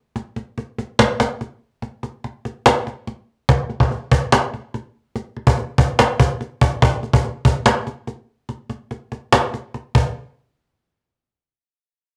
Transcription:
0.16 cajon slap
0.36 cajon slap
0.58 cajon slap
0.78 cajon slap
0.99 cajon slap
1.20 cajon slap
1.41 cajon slap
1.82 cajon slap
2.03 cajon slap
2.24 cajon slap
2.45 cajon slap
2.66 cajon slap
2.87 cajon slap
3.08 cajon slap
3.49 cajon bass
3.70 cajon slap
3.80 cajon bass
3.91 cajon slap
4.12 cajon bass
4.32 cajon slap
4.54 cajon slap
4.74 cajon slap
5.16 cajon slap
5.37 cajon slap
5.47 cajon bass
5.58 cajon slap
5.78 cajon bass
5.99 cajon slap
6.20 cajon bass
6.41 cajon slap
6.61 cajon bass
6.82 cajon bass
7.03 cajon slap
7.14 cajon bass
7.24 cajon slap
7.45 cajon bass
7.66 cajon slap
7.87 cajon slap
8.08 cajon slap
8.49 cajon slap
8.70 cajon slap
8.91 cajon slap
9.12 cajon slap
9.32 cajon slap
9.54 cajon slap
9.74 cajon slap
9.95 cajon bass

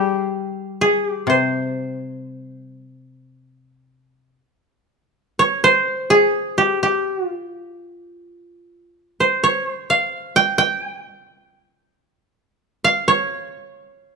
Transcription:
Already playing: F3 G3 G4 F5
0.81 G#4
1.07 G4
1.27 C3 C5
5.39 C#5
5.64 C5
6.10 G#4
6.58 G4
6.83 G4
7.26 F4
9.20 C5
9.44 C#5
9.69 C5
9.90 F5
10.36 G5
10.58 G5
12.84 F5
13.08 C#5

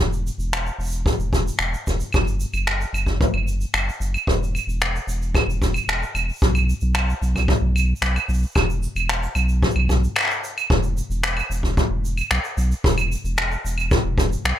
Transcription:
0.00 E1
0.13 shaker
0.27 shaker
0.38 E1, shaker
0.53 finger snap, shaker
0.66 shaker
0.78 E1, shaker
0.83 shaker
0.85 shaker
0.87 shaker
0.89 shaker
0.92 shaker
0.93 shaker
1.06 kick, shaker
1.19 E1, shaker
1.33 kick, shaker
1.48 shaker
1.59 E1, finger snap, shaker
1.74 shaker
1.87 E1, kick, shaker
2.00 shaker
2.13 F#1, kick, claves, shaker
2.27 shaker
2.40 shaker
2.53 F#1, claves, shaker
2.67 finger snap, shaker
2.81 shaker
2.93 F#1, claves, shaker
3.06 kick, shaker
3.21 kick, shaker
3.33 F#1, claves
3.48 shaker
3.61 shaker
3.74 F#1, finger snap, claves, shaker
3.89 shaker
4.00 F#1, shaker
4.14 claves, shaker
4.27 E1, kick, shaker
4.43 shaker
4.55 claves, shaker
4.67 E1, shaker
4.81 finger snap, shaker
4.96 shaker
5.07 E1, shaker
5.22 shaker
5.35 kick, claves, shaker
5.47 E1, shaker
5.62 kick, shaker
5.74 claves, shaker
5.88 E1, finger snap, shaker
6.03 shaker
6.15 E1, claves, shaker
6.29 shaker
6.31 shaker
6.33 shaker
6.36 shaker
6.38 shaker
6.40 B1, kick, shaker
6.43 shaker
6.55 claves, shaker
6.69 shaker
6.81 B1, shaker
6.95 finger snap, claves, shaker
7.10 shaker
7.22 B1, shaker
7.36 kick, claves, shaker
7.48 kick, shaker
7.61 B1
7.76 claves, shaker
7.96 shaker
8.02 B1, finger snap, shaker
8.16 claves, shaker
8.29 B1, shaker
8.34 shaker
8.38 shaker
8.42 shaker
8.47 shaker
8.51 claves, shaker
8.56 E1, kick, shaker
8.70 shaker
8.83 shaker
8.95 E1, claves, shaker
9.09 finger snap, shaker
9.23 shaker
9.35 B1, claves, shaker
9.49 shaker
9.63 kick, shaker
9.71 shaker
9.76 B1, claves
9.89 kick, shaker
10.04 shaker
10.16 finger snap, claves, shaker
10.19 finger snap
10.21 finger snap
10.23 finger snap
10.25 finger snap
10.27 finger snap, shaker
10.44 shaker
10.58 claves, shaker
10.70 E1, kick, shaker
10.83 shaker
10.97 shaker
11.10 E1, shaker
11.23 finger snap, shaker
11.37 claves, shaker
11.50 E1, shaker
11.63 kick, shaker
11.77 kick, shaker
11.90 E1
12.05 shaker
12.18 claves, shaker
12.31 B1, finger snap, shaker
12.44 shaker
12.57 B1, shaker
12.71 shaker
12.84 E1, kick, shaker
12.98 claves, shaker
13.12 shaker
13.24 E1, shaker
13.38 finger snap, shaker
13.52 shaker
13.65 E1, shaker
13.78 claves, shaker
13.91 kick, shaker
14.05 E1
14.18 kick, shaker
14.32 shaker
14.44 B1, finger snap, shaker

